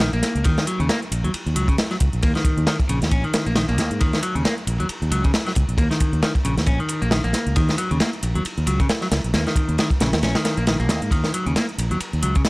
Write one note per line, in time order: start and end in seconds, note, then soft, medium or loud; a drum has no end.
0.00 0.10 D#3 medium
0.00 snare loud
0.00 closed hi-hat soft
0.00 ride medium
0.13 0.21 A#1 medium
0.13 0.44 A#3 medium
0.13 closed hi-hat soft
0.13 ride soft
0.23 snare medium
0.23 closed hi-hat medium
0.23 ride medium
0.35 0.43 C#2 medium
0.35 closed hi-hat soft
0.44 0.56 D#2 medium
0.44 0.66 D#3 loud
0.44 kick loud
0.44 closed hi-hat soft
0.44 ride medium
0.58 snare medium
0.58 closed hi-hat soft
0.67 0.79 F#3 medium
0.67 closed hi-hat medium
0.67 ride medium
0.80 0.88 D#2 loud
0.80 0.87 C#3 medium
0.80 closed hi-hat soft
0.89 0.99 A#3 medium
0.89 snare loud
0.89 closed hi-hat soft
0.89 ride medium
1.02 closed hi-hat soft
1.11 1.22 A#1 medium
1.11 closed hi-hat medium
1.11 ride medium
1.24 1.32 D#2 medium
1.24 1.31 F#3 medium
1.24 closed hi-hat soft
1.34 muted fingered electric bass stroke soft
1.34 closed hi-hat soft
1.34 ride medium
1.46 1.54 D#2 medium
1.46 closed hi-hat soft
1.56 1.67 C#2 medium
1.56 1.67 F#3 medium
1.56 closed hi-hat medium
1.56 ride medium
1.68 1.76 C#3 medium
1.68 kick medium
1.68 closed hi-hat soft
1.78 snare loud
1.78 closed hi-hat soft
1.78 ride medium
1.91 1.95 F#3 medium
1.91 snare soft
1.91 closed hi-hat soft
2.00 2.11 C#2 medium
2.00 kick loud
2.00 closed hi-hat medium
2.00 ride medium
2.13 2.21 A#1 medium
2.13 closed hi-hat soft
2.23 2.34 D#2 medium
2.23 2.32 A#3 medium
2.23 kick loud
2.23 closed hi-hat soft
2.23 ride medium
2.35 2.66 D#3 medium
2.35 snare soft
2.35 closed hi-hat soft
2.45 kick loud
2.45 closed hi-hat medium
2.45 ride medium
2.57 2.65 D#2 medium
2.57 closed hi-hat soft
2.67 2.76 D#3 medium
2.67 snare loud
2.67 closed hi-hat soft
2.67 ride medium
2.80 kick medium
2.80 closed hi-hat soft
2.89 3.00 A#1 medium
2.89 2.98 C#3 medium
2.89 closed hi-hat medium
2.89 ride medium
3.02 3.10 D#2 medium
3.02 snare soft
3.02 closed hi-hat soft
3.11 3.22 A#1 medium
3.11 3.23 C#4 medium
3.11 kick loud
3.11 closed hi-hat soft
3.11 ride medium
3.24 3.45 D#3 medium
3.24 closed hi-hat soft
3.34 snare loud
3.34 closed hi-hat medium
3.34 ride medium
3.46 3.65 A#1 medium
3.46 3.53 A#3 medium
3.46 closed hi-hat soft
3.56 3.65 D#3 medium
3.56 snare loud
3.56 closed hi-hat soft
3.56 ride medium
3.69 3.78 A#1 medium
3.69 3.99 A#3 medium
3.69 closed hi-hat soft
3.69 ride soft
3.78 3.89 D#2 medium
3.78 snare medium
3.78 closed hi-hat medium
3.78 ride medium
3.91 3.99 G#2 medium
3.91 closed hi-hat soft
4.01 4.12 D#2 loud
4.01 4.22 D#3 medium
4.01 kick loud
4.01 closed hi-hat soft
4.01 ride medium
4.13 snare medium
4.13 closed hi-hat soft
4.23 4.34 F#3 medium
4.23 closed hi-hat medium
4.23 ride medium
4.35 4.43 D#2 loud
4.35 4.42 C#3 medium
4.35 closed hi-hat soft
4.45 4.54 A#3 medium
4.45 snare loud
4.45 closed hi-hat soft
4.45 ride medium
4.58 closed hi-hat soft
4.67 4.78 A#1 medium
4.67 closed hi-hat medium
4.67 ride medium
4.80 4.88 D#2 medium
4.80 4.87 F#3 medium
4.80 closed hi-hat soft
4.89 muted fingered electric bass stroke soft
4.89 closed hi-hat soft
4.89 ride medium
5.02 5.10 D#2 medium
5.02 closed hi-hat soft
5.11 5.22 C#2 medium
5.11 5.23 F#3 medium
5.11 closed hi-hat medium
5.11 ride medium
5.24 5.31 C#3 medium
5.24 kick loud
5.24 closed hi-hat soft
5.34 snare loud
5.34 closed hi-hat soft
5.34 ride medium
5.47 5.51 F#3 medium
5.47 snare soft
5.47 closed hi-hat soft
5.55 5.67 C#2 medium
5.55 kick medium
5.55 closed hi-hat medium
5.55 ride medium
5.69 5.77 A#1 medium
5.69 closed hi-hat soft
5.78 5.89 D#2 loud
5.78 5.87 A#3 medium
5.78 kick loud
5.78 closed hi-hat soft
5.78 ride medium
5.91 6.21 D#3 medium
5.91 snare soft
5.91 closed hi-hat soft
6.00 kick medium
6.00 closed hi-hat medium
6.00 ride medium
6.13 6.21 D#2 loud
6.13 closed hi-hat soft
6.22 6.32 D#3 medium
6.22 snare loud
6.22 closed hi-hat soft
6.22 ride medium
6.35 kick medium
6.35 closed hi-hat soft
6.45 6.55 A#1 medium
6.45 6.54 C#3 medium
6.45 closed hi-hat medium
6.45 ride medium
6.57 6.65 D#2 medium
6.57 snare medium
6.57 closed hi-hat soft
6.66 6.78 A#1 medium
6.66 6.78 C#4 medium
6.66 kick loud
6.66 closed hi-hat soft
6.66 ride medium
6.80 7.01 D#3 medium
6.80 closed hi-hat soft
6.88 closed hi-hat medium
6.88 ride medium
7.02 7.20 A#1 medium
7.02 7.09 A#3 medium
7.02 closed hi-hat soft
7.11 7.21 D#3 medium
7.11 snare loud
7.11 closed hi-hat soft
7.11 ride medium
7.24 7.32 A#1 medium
7.24 7.55 A#3 medium
7.24 closed hi-hat soft
7.24 ride soft
7.33 snare medium
7.33 closed hi-hat medium
7.33 ride medium
7.46 7.54 C#2 medium
7.46 closed hi-hat soft
7.56 7.67 D#2 loud
7.56 7.77 D#3 medium
7.56 kick loud
7.56 closed hi-hat soft
7.56 ride loud
7.69 snare medium
7.69 closed hi-hat soft
7.78 7.90 F#3 medium
7.78 closed hi-hat medium
7.78 ride medium
7.91 7.99 D#2 loud
7.91 7.98 C#3 medium
7.91 closed hi-hat soft
8.00 8.10 A#3 medium
8.00 snare loud
8.00 closed hi-hat soft
8.00 ride medium
8.13 closed hi-hat soft
8.23 8.33 A#1 medium
8.23 closed hi-hat medium
8.23 ride medium
8.35 8.43 D#2 medium
8.35 8.42 F#3 medium
8.35 closed hi-hat soft
8.45 muted fingered electric bass stroke soft
8.45 closed hi-hat soft
8.45 ride medium
8.58 8.66 D#2 medium
8.58 closed hi-hat soft
8.67 8.78 C#2 medium
8.67 8.79 F#3 medium
8.67 closed hi-hat medium
8.67 ride medium
8.80 8.87 C#3 medium
8.80 kick medium
8.80 closed hi-hat soft
8.89 snare loud
8.89 closed hi-hat soft
8.89 ride medium
9.01 9.06 F#3 medium
9.01 snare soft
9.01 closed hi-hat soft
9.11 9.22 C#2 loud
9.11 snare medium
9.11 closed hi-hat medium
9.11 ride medium
9.24 9.32 A#1 medium
9.24 closed hi-hat soft
9.34 9.44 D#2 loud
9.34 9.43 A#3 medium
9.34 snare medium
9.34 closed hi-hat soft
9.34 ride medium
9.47 9.77 D#3 medium
9.47 snare soft
9.47 closed hi-hat soft
9.56 kick medium
9.56 closed hi-hat medium
9.56 ride medium
9.69 9.77 D#2 loud
9.69 closed hi-hat soft
9.78 9.88 D#3 medium
9.78 snare loud
9.78 closed hi-hat soft
9.78 ride medium
9.90 kick medium
9.90 closed hi-hat soft
10.00 10.11 A#1 medium
10.00 10.10 C#3 medium
10.00 snare loud
10.00 closed hi-hat medium
10.00 ride medium
10.13 10.21 D#2 medium
10.13 snare loud
10.13 closed hi-hat soft
10.13 ride medium
10.22 10.33 A#1 medium
10.22 10.34 C#4 medium
10.22 snare medium
10.22 closed hi-hat soft
10.22 ride medium
10.35 10.56 D#3 medium
10.35 snare loud
10.35 closed hi-hat soft
10.35 ride medium
10.45 snare medium
10.45 closed hi-hat medium
10.45 ride medium
10.57 10.76 A#1 medium
10.57 10.65 A#3 medium
10.57 closed hi-hat soft
10.67 10.76 D#3 medium
10.67 snare loud
10.67 closed hi-hat soft
10.67 ride medium
10.80 10.89 A#1 medium
10.80 11.11 A#3 medium
10.80 closed hi-hat soft
10.80 ride soft
10.89 11.00 D#2 medium
10.89 snare loud
10.89 closed hi-hat medium
10.89 ride medium
11.02 11.10 G#2 medium
11.02 closed hi-hat soft
11.11 11.22 D#2 loud
11.11 11.33 D#3 medium
11.11 kick loud
11.11 closed hi-hat soft
11.11 ride medium
11.24 snare medium
11.24 closed hi-hat soft
11.34 11.45 F#3 medium
11.34 closed hi-hat medium
11.34 ride medium
11.46 11.54 D#2 loud
11.46 11.53 C#3 medium
11.46 closed hi-hat soft
11.56 11.65 A#3 medium
11.56 snare loud
11.56 closed hi-hat soft
11.56 ride medium
11.69 closed hi-hat soft
11.78 11.89 A#1 medium
11.78 closed hi-hat medium
11.78 ride medium
11.91 11.99 D#2 medium
11.91 11.98 F#3 medium
11.91 closed hi-hat soft
12.00 muted fingered electric bass stroke soft
12.00 closed hi-hat soft
12.00 ride medium
12.13 12.21 D#2 medium
12.13 closed hi-hat soft
12.23 12.33 C#2 medium
12.23 12.34 F#3 medium
12.23 closed hi-hat medium
12.23 ride medium
12.35 12.42 C#3 medium
12.35 kick medium
12.35 closed hi-hat soft
12.45 snare loud
12.45 closed hi-hat soft
12.45 ride medium